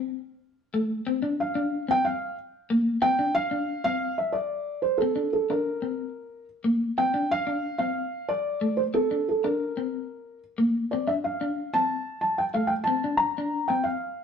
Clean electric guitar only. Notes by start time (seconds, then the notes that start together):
Already playing: C4
0.74 A3
1.07 C4
1.22 D4
1.55 D4
1.88 C4
2.70 A#3
3.02 C4
3.19 D4
3.51 D4
3.85 C4
5.02 C4
5.16 D4
5.50 D4
5.82 C4
6.64 A#3
6.98 C4
7.14 D4
7.47 D4
7.79 C4
8.61 A3
8.94 C4
9.11 D4
9.44 D4
9.77 C4
10.58 A#3
10.93 C4
11.07 D4
11.41 D4
11.74 C4
12.54 A3
12.87 C4
13.04 D4
13.38 D4
13.70 C4